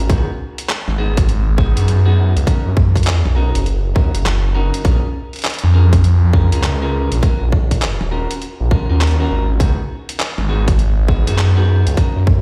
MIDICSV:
0, 0, Header, 1, 4, 480
1, 0, Start_track
1, 0, Tempo, 594059
1, 78, Time_signature, 4, 2, 24, 8
1, 10031, End_track
2, 0, Start_track
2, 0, Title_t, "Clean electric guitar"
2, 0, Program_c, 0, 27
2, 73, Note_on_c, 0, 63, 75
2, 78, Note_on_c, 0, 66, 67
2, 85, Note_on_c, 0, 68, 82
2, 88, Note_on_c, 0, 59, 69
2, 245, Note_off_c, 0, 63, 0
2, 245, Note_off_c, 0, 66, 0
2, 246, Note_off_c, 0, 59, 0
2, 246, Note_off_c, 0, 68, 0
2, 792, Note_on_c, 0, 59, 83
2, 796, Note_on_c, 0, 68, 91
2, 798, Note_on_c, 0, 66, 71
2, 803, Note_on_c, 0, 63, 72
2, 964, Note_off_c, 0, 59, 0
2, 964, Note_off_c, 0, 63, 0
2, 964, Note_off_c, 0, 66, 0
2, 965, Note_off_c, 0, 68, 0
2, 1272, Note_on_c, 0, 59, 87
2, 1274, Note_on_c, 0, 68, 92
2, 1278, Note_on_c, 0, 66, 71
2, 1282, Note_on_c, 0, 63, 69
2, 1405, Note_off_c, 0, 59, 0
2, 1405, Note_off_c, 0, 66, 0
2, 1405, Note_off_c, 0, 68, 0
2, 1406, Note_off_c, 0, 63, 0
2, 1420, Note_on_c, 0, 59, 80
2, 1423, Note_on_c, 0, 68, 91
2, 1428, Note_on_c, 0, 66, 68
2, 1432, Note_on_c, 0, 63, 68
2, 1630, Note_off_c, 0, 66, 0
2, 1630, Note_off_c, 0, 68, 0
2, 1631, Note_off_c, 0, 59, 0
2, 1631, Note_off_c, 0, 63, 0
2, 1660, Note_on_c, 0, 59, 106
2, 1663, Note_on_c, 0, 68, 104
2, 1667, Note_on_c, 0, 66, 89
2, 1669, Note_on_c, 0, 63, 77
2, 1889, Note_off_c, 0, 63, 0
2, 1890, Note_off_c, 0, 59, 0
2, 1890, Note_off_c, 0, 66, 0
2, 1890, Note_off_c, 0, 68, 0
2, 1990, Note_on_c, 0, 61, 83
2, 1994, Note_on_c, 0, 63, 73
2, 1999, Note_on_c, 0, 66, 66
2, 2003, Note_on_c, 0, 70, 80
2, 2163, Note_off_c, 0, 70, 0
2, 2164, Note_off_c, 0, 61, 0
2, 2164, Note_off_c, 0, 63, 0
2, 2164, Note_off_c, 0, 66, 0
2, 2712, Note_on_c, 0, 70, 93
2, 2717, Note_on_c, 0, 66, 75
2, 2722, Note_on_c, 0, 63, 76
2, 2726, Note_on_c, 0, 61, 79
2, 2884, Note_off_c, 0, 61, 0
2, 2885, Note_off_c, 0, 63, 0
2, 2885, Note_off_c, 0, 66, 0
2, 2885, Note_off_c, 0, 70, 0
2, 3192, Note_on_c, 0, 70, 86
2, 3194, Note_on_c, 0, 66, 74
2, 3199, Note_on_c, 0, 63, 68
2, 3200, Note_on_c, 0, 61, 72
2, 3363, Note_off_c, 0, 61, 0
2, 3364, Note_off_c, 0, 63, 0
2, 3364, Note_off_c, 0, 66, 0
2, 3364, Note_off_c, 0, 70, 0
2, 3673, Note_on_c, 0, 70, 101
2, 3677, Note_on_c, 0, 66, 86
2, 3679, Note_on_c, 0, 63, 84
2, 3684, Note_on_c, 0, 61, 78
2, 3895, Note_off_c, 0, 61, 0
2, 3896, Note_off_c, 0, 63, 0
2, 3896, Note_off_c, 0, 66, 0
2, 3896, Note_off_c, 0, 70, 0
2, 3910, Note_on_c, 0, 61, 74
2, 3916, Note_on_c, 0, 65, 66
2, 3920, Note_on_c, 0, 68, 69
2, 3926, Note_on_c, 0, 70, 79
2, 4084, Note_off_c, 0, 61, 0
2, 4084, Note_off_c, 0, 65, 0
2, 4084, Note_off_c, 0, 68, 0
2, 4085, Note_off_c, 0, 70, 0
2, 4636, Note_on_c, 0, 70, 93
2, 4640, Note_on_c, 0, 68, 76
2, 4642, Note_on_c, 0, 65, 69
2, 4647, Note_on_c, 0, 61, 83
2, 4806, Note_off_c, 0, 65, 0
2, 4806, Note_off_c, 0, 68, 0
2, 4806, Note_off_c, 0, 70, 0
2, 4807, Note_off_c, 0, 61, 0
2, 5119, Note_on_c, 0, 70, 96
2, 5122, Note_on_c, 0, 68, 73
2, 5125, Note_on_c, 0, 65, 76
2, 5130, Note_on_c, 0, 61, 77
2, 5248, Note_off_c, 0, 65, 0
2, 5248, Note_off_c, 0, 70, 0
2, 5249, Note_off_c, 0, 61, 0
2, 5249, Note_off_c, 0, 68, 0
2, 5269, Note_on_c, 0, 70, 93
2, 5272, Note_on_c, 0, 68, 75
2, 5274, Note_on_c, 0, 65, 73
2, 5276, Note_on_c, 0, 61, 74
2, 5474, Note_off_c, 0, 61, 0
2, 5474, Note_off_c, 0, 65, 0
2, 5474, Note_off_c, 0, 68, 0
2, 5474, Note_off_c, 0, 70, 0
2, 5510, Note_on_c, 0, 70, 112
2, 5511, Note_on_c, 0, 68, 88
2, 5518, Note_on_c, 0, 65, 87
2, 5521, Note_on_c, 0, 61, 86
2, 5734, Note_off_c, 0, 68, 0
2, 5735, Note_off_c, 0, 61, 0
2, 5735, Note_off_c, 0, 65, 0
2, 5735, Note_off_c, 0, 70, 0
2, 5836, Note_on_c, 0, 61, 74
2, 5837, Note_on_c, 0, 65, 72
2, 5843, Note_on_c, 0, 66, 66
2, 5847, Note_on_c, 0, 70, 84
2, 6005, Note_off_c, 0, 65, 0
2, 6006, Note_off_c, 0, 61, 0
2, 6006, Note_off_c, 0, 66, 0
2, 6006, Note_off_c, 0, 70, 0
2, 6554, Note_on_c, 0, 70, 94
2, 6558, Note_on_c, 0, 66, 78
2, 6562, Note_on_c, 0, 65, 76
2, 6566, Note_on_c, 0, 61, 74
2, 6726, Note_off_c, 0, 61, 0
2, 6726, Note_off_c, 0, 65, 0
2, 6726, Note_off_c, 0, 66, 0
2, 6726, Note_off_c, 0, 70, 0
2, 7039, Note_on_c, 0, 70, 104
2, 7040, Note_on_c, 0, 66, 77
2, 7043, Note_on_c, 0, 65, 69
2, 7047, Note_on_c, 0, 61, 83
2, 7168, Note_off_c, 0, 61, 0
2, 7168, Note_off_c, 0, 65, 0
2, 7168, Note_off_c, 0, 66, 0
2, 7168, Note_off_c, 0, 70, 0
2, 7187, Note_on_c, 0, 70, 96
2, 7192, Note_on_c, 0, 66, 78
2, 7194, Note_on_c, 0, 65, 74
2, 7201, Note_on_c, 0, 61, 76
2, 7393, Note_off_c, 0, 65, 0
2, 7394, Note_off_c, 0, 61, 0
2, 7394, Note_off_c, 0, 66, 0
2, 7394, Note_off_c, 0, 70, 0
2, 7432, Note_on_c, 0, 70, 116
2, 7434, Note_on_c, 0, 66, 87
2, 7436, Note_on_c, 0, 65, 84
2, 7441, Note_on_c, 0, 61, 84
2, 7655, Note_off_c, 0, 61, 0
2, 7655, Note_off_c, 0, 65, 0
2, 7655, Note_off_c, 0, 66, 0
2, 7656, Note_off_c, 0, 70, 0
2, 7753, Note_on_c, 0, 63, 73
2, 7756, Note_on_c, 0, 66, 77
2, 7761, Note_on_c, 0, 68, 80
2, 7763, Note_on_c, 0, 59, 66
2, 7924, Note_off_c, 0, 59, 0
2, 7924, Note_off_c, 0, 68, 0
2, 7925, Note_off_c, 0, 63, 0
2, 7925, Note_off_c, 0, 66, 0
2, 8474, Note_on_c, 0, 59, 91
2, 8477, Note_on_c, 0, 68, 94
2, 8480, Note_on_c, 0, 66, 77
2, 8484, Note_on_c, 0, 63, 68
2, 8645, Note_off_c, 0, 59, 0
2, 8645, Note_off_c, 0, 63, 0
2, 8645, Note_off_c, 0, 66, 0
2, 8645, Note_off_c, 0, 68, 0
2, 8953, Note_on_c, 0, 59, 93
2, 8958, Note_on_c, 0, 68, 96
2, 8960, Note_on_c, 0, 66, 71
2, 8965, Note_on_c, 0, 63, 72
2, 9086, Note_off_c, 0, 59, 0
2, 9086, Note_off_c, 0, 63, 0
2, 9086, Note_off_c, 0, 66, 0
2, 9087, Note_off_c, 0, 68, 0
2, 9104, Note_on_c, 0, 59, 82
2, 9107, Note_on_c, 0, 68, 93
2, 9112, Note_on_c, 0, 66, 74
2, 9117, Note_on_c, 0, 63, 67
2, 9312, Note_off_c, 0, 59, 0
2, 9312, Note_off_c, 0, 63, 0
2, 9312, Note_off_c, 0, 66, 0
2, 9312, Note_off_c, 0, 68, 0
2, 9343, Note_on_c, 0, 59, 101
2, 9347, Note_on_c, 0, 68, 115
2, 9350, Note_on_c, 0, 66, 83
2, 9352, Note_on_c, 0, 63, 83
2, 9571, Note_off_c, 0, 59, 0
2, 9571, Note_off_c, 0, 63, 0
2, 9571, Note_off_c, 0, 66, 0
2, 9572, Note_off_c, 0, 68, 0
2, 9670, Note_on_c, 0, 61, 82
2, 9675, Note_on_c, 0, 63, 67
2, 9680, Note_on_c, 0, 66, 64
2, 9685, Note_on_c, 0, 70, 81
2, 9844, Note_off_c, 0, 61, 0
2, 9844, Note_off_c, 0, 63, 0
2, 9844, Note_off_c, 0, 66, 0
2, 9844, Note_off_c, 0, 70, 0
2, 10031, End_track
3, 0, Start_track
3, 0, Title_t, "Detuned saw bass"
3, 0, Program_c, 1, 39
3, 78, Note_on_c, 1, 37, 103
3, 205, Note_off_c, 1, 37, 0
3, 709, Note_on_c, 1, 32, 94
3, 1405, Note_off_c, 1, 32, 0
3, 1427, Note_on_c, 1, 42, 92
3, 1884, Note_off_c, 1, 42, 0
3, 1906, Note_on_c, 1, 37, 97
3, 1982, Note_off_c, 1, 37, 0
3, 2149, Note_on_c, 1, 42, 95
3, 2605, Note_off_c, 1, 42, 0
3, 2630, Note_on_c, 1, 35, 100
3, 2845, Note_off_c, 1, 35, 0
3, 2871, Note_on_c, 1, 30, 101
3, 3184, Note_off_c, 1, 30, 0
3, 3197, Note_on_c, 1, 39, 93
3, 3325, Note_off_c, 1, 39, 0
3, 3348, Note_on_c, 1, 30, 89
3, 3804, Note_off_c, 1, 30, 0
3, 3918, Note_on_c, 1, 34, 98
3, 4045, Note_off_c, 1, 34, 0
3, 4553, Note_on_c, 1, 41, 102
3, 5247, Note_off_c, 1, 41, 0
3, 5273, Note_on_c, 1, 37, 95
3, 5727, Note_off_c, 1, 37, 0
3, 5751, Note_on_c, 1, 34, 98
3, 5824, Note_off_c, 1, 34, 0
3, 5989, Note_on_c, 1, 34, 95
3, 6445, Note_off_c, 1, 34, 0
3, 6471, Note_on_c, 1, 27, 97
3, 6686, Note_off_c, 1, 27, 0
3, 6952, Note_on_c, 1, 34, 93
3, 7167, Note_off_c, 1, 34, 0
3, 7192, Note_on_c, 1, 39, 94
3, 7505, Note_off_c, 1, 39, 0
3, 7520, Note_on_c, 1, 32, 96
3, 7745, Note_off_c, 1, 32, 0
3, 7756, Note_on_c, 1, 37, 103
3, 7884, Note_off_c, 1, 37, 0
3, 8388, Note_on_c, 1, 32, 94
3, 9085, Note_off_c, 1, 32, 0
3, 9106, Note_on_c, 1, 42, 91
3, 9564, Note_off_c, 1, 42, 0
3, 9588, Note_on_c, 1, 37, 100
3, 9663, Note_off_c, 1, 37, 0
3, 9828, Note_on_c, 1, 42, 99
3, 10031, Note_off_c, 1, 42, 0
3, 10031, End_track
4, 0, Start_track
4, 0, Title_t, "Drums"
4, 77, Note_on_c, 9, 36, 127
4, 81, Note_on_c, 9, 42, 57
4, 158, Note_off_c, 9, 36, 0
4, 162, Note_off_c, 9, 42, 0
4, 471, Note_on_c, 9, 42, 72
4, 552, Note_off_c, 9, 42, 0
4, 559, Note_on_c, 9, 39, 127
4, 559, Note_on_c, 9, 42, 56
4, 640, Note_off_c, 9, 39, 0
4, 640, Note_off_c, 9, 42, 0
4, 709, Note_on_c, 9, 38, 42
4, 789, Note_off_c, 9, 38, 0
4, 948, Note_on_c, 9, 42, 69
4, 949, Note_on_c, 9, 36, 125
4, 1029, Note_off_c, 9, 42, 0
4, 1030, Note_off_c, 9, 36, 0
4, 1040, Note_on_c, 9, 42, 55
4, 1120, Note_off_c, 9, 42, 0
4, 1277, Note_on_c, 9, 36, 107
4, 1358, Note_off_c, 9, 36, 0
4, 1429, Note_on_c, 9, 42, 66
4, 1510, Note_off_c, 9, 42, 0
4, 1520, Note_on_c, 9, 42, 54
4, 1601, Note_off_c, 9, 42, 0
4, 1912, Note_on_c, 9, 42, 63
4, 1993, Note_off_c, 9, 42, 0
4, 1996, Note_on_c, 9, 36, 125
4, 2000, Note_on_c, 9, 42, 54
4, 2077, Note_off_c, 9, 36, 0
4, 2081, Note_off_c, 9, 42, 0
4, 2236, Note_on_c, 9, 36, 114
4, 2317, Note_off_c, 9, 36, 0
4, 2388, Note_on_c, 9, 36, 64
4, 2392, Note_on_c, 9, 42, 30
4, 2400, Note_off_c, 9, 42, 0
4, 2400, Note_on_c, 9, 42, 43
4, 2448, Note_off_c, 9, 42, 0
4, 2448, Note_on_c, 9, 42, 54
4, 2469, Note_off_c, 9, 36, 0
4, 2479, Note_off_c, 9, 42, 0
4, 2479, Note_on_c, 9, 39, 127
4, 2479, Note_on_c, 9, 42, 52
4, 2560, Note_off_c, 9, 39, 0
4, 2560, Note_off_c, 9, 42, 0
4, 2630, Note_on_c, 9, 38, 41
4, 2711, Note_off_c, 9, 38, 0
4, 2870, Note_on_c, 9, 42, 65
4, 2951, Note_off_c, 9, 42, 0
4, 2958, Note_on_c, 9, 42, 52
4, 3039, Note_off_c, 9, 42, 0
4, 3197, Note_on_c, 9, 36, 104
4, 3278, Note_off_c, 9, 36, 0
4, 3350, Note_on_c, 9, 42, 64
4, 3431, Note_off_c, 9, 42, 0
4, 3440, Note_on_c, 9, 38, 52
4, 3440, Note_on_c, 9, 39, 127
4, 3440, Note_on_c, 9, 42, 54
4, 3521, Note_off_c, 9, 38, 0
4, 3521, Note_off_c, 9, 39, 0
4, 3521, Note_off_c, 9, 42, 0
4, 3830, Note_on_c, 9, 42, 65
4, 3910, Note_off_c, 9, 42, 0
4, 3917, Note_on_c, 9, 36, 123
4, 3917, Note_on_c, 9, 42, 50
4, 3998, Note_off_c, 9, 36, 0
4, 3998, Note_off_c, 9, 42, 0
4, 4308, Note_on_c, 9, 42, 28
4, 4330, Note_off_c, 9, 42, 0
4, 4330, Note_on_c, 9, 42, 33
4, 4353, Note_off_c, 9, 42, 0
4, 4353, Note_on_c, 9, 42, 36
4, 4378, Note_off_c, 9, 42, 0
4, 4378, Note_on_c, 9, 42, 40
4, 4399, Note_off_c, 9, 42, 0
4, 4399, Note_on_c, 9, 39, 124
4, 4399, Note_on_c, 9, 42, 55
4, 4441, Note_off_c, 9, 42, 0
4, 4441, Note_on_c, 9, 42, 50
4, 4474, Note_off_c, 9, 42, 0
4, 4474, Note_on_c, 9, 42, 56
4, 4480, Note_off_c, 9, 39, 0
4, 4513, Note_off_c, 9, 42, 0
4, 4513, Note_on_c, 9, 42, 59
4, 4554, Note_on_c, 9, 38, 41
4, 4594, Note_off_c, 9, 42, 0
4, 4634, Note_off_c, 9, 38, 0
4, 4789, Note_on_c, 9, 36, 115
4, 4791, Note_on_c, 9, 42, 64
4, 4870, Note_off_c, 9, 36, 0
4, 4872, Note_off_c, 9, 42, 0
4, 4881, Note_on_c, 9, 42, 51
4, 4961, Note_off_c, 9, 42, 0
4, 5118, Note_on_c, 9, 36, 102
4, 5199, Note_off_c, 9, 36, 0
4, 5271, Note_on_c, 9, 42, 63
4, 5352, Note_off_c, 9, 42, 0
4, 5359, Note_on_c, 9, 39, 115
4, 5359, Note_on_c, 9, 42, 52
4, 5440, Note_off_c, 9, 39, 0
4, 5440, Note_off_c, 9, 42, 0
4, 5751, Note_on_c, 9, 42, 62
4, 5831, Note_off_c, 9, 42, 0
4, 5839, Note_on_c, 9, 42, 49
4, 5840, Note_on_c, 9, 36, 115
4, 5920, Note_off_c, 9, 42, 0
4, 5921, Note_off_c, 9, 36, 0
4, 6080, Note_on_c, 9, 36, 103
4, 6161, Note_off_c, 9, 36, 0
4, 6231, Note_on_c, 9, 36, 62
4, 6231, Note_on_c, 9, 42, 64
4, 6312, Note_off_c, 9, 36, 0
4, 6312, Note_off_c, 9, 42, 0
4, 6317, Note_on_c, 9, 39, 122
4, 6317, Note_on_c, 9, 42, 51
4, 6398, Note_off_c, 9, 39, 0
4, 6398, Note_off_c, 9, 42, 0
4, 6470, Note_on_c, 9, 38, 43
4, 6551, Note_off_c, 9, 38, 0
4, 6712, Note_on_c, 9, 42, 65
4, 6792, Note_off_c, 9, 42, 0
4, 6800, Note_on_c, 9, 42, 52
4, 6881, Note_off_c, 9, 42, 0
4, 7039, Note_on_c, 9, 36, 107
4, 7120, Note_off_c, 9, 36, 0
4, 7279, Note_on_c, 9, 39, 122
4, 7279, Note_on_c, 9, 42, 48
4, 7331, Note_off_c, 9, 42, 0
4, 7331, Note_on_c, 9, 42, 41
4, 7360, Note_off_c, 9, 39, 0
4, 7361, Note_off_c, 9, 42, 0
4, 7361, Note_on_c, 9, 42, 31
4, 7441, Note_off_c, 9, 42, 0
4, 7757, Note_on_c, 9, 36, 112
4, 7761, Note_on_c, 9, 42, 66
4, 7838, Note_off_c, 9, 36, 0
4, 7842, Note_off_c, 9, 42, 0
4, 8153, Note_on_c, 9, 42, 67
4, 8233, Note_off_c, 9, 42, 0
4, 8238, Note_on_c, 9, 39, 125
4, 8238, Note_on_c, 9, 42, 54
4, 8319, Note_off_c, 9, 39, 0
4, 8319, Note_off_c, 9, 42, 0
4, 8388, Note_on_c, 9, 38, 43
4, 8469, Note_off_c, 9, 38, 0
4, 8627, Note_on_c, 9, 36, 112
4, 8628, Note_on_c, 9, 42, 65
4, 8708, Note_off_c, 9, 36, 0
4, 8708, Note_off_c, 9, 42, 0
4, 8717, Note_on_c, 9, 42, 53
4, 8798, Note_off_c, 9, 42, 0
4, 8956, Note_on_c, 9, 36, 100
4, 9037, Note_off_c, 9, 36, 0
4, 9109, Note_on_c, 9, 42, 67
4, 9190, Note_off_c, 9, 42, 0
4, 9197, Note_on_c, 9, 39, 116
4, 9197, Note_on_c, 9, 42, 52
4, 9277, Note_off_c, 9, 39, 0
4, 9277, Note_off_c, 9, 42, 0
4, 9589, Note_on_c, 9, 42, 64
4, 9670, Note_off_c, 9, 42, 0
4, 9674, Note_on_c, 9, 36, 116
4, 9676, Note_on_c, 9, 42, 56
4, 9755, Note_off_c, 9, 36, 0
4, 9756, Note_off_c, 9, 42, 0
4, 9914, Note_on_c, 9, 36, 108
4, 9995, Note_off_c, 9, 36, 0
4, 10031, End_track
0, 0, End_of_file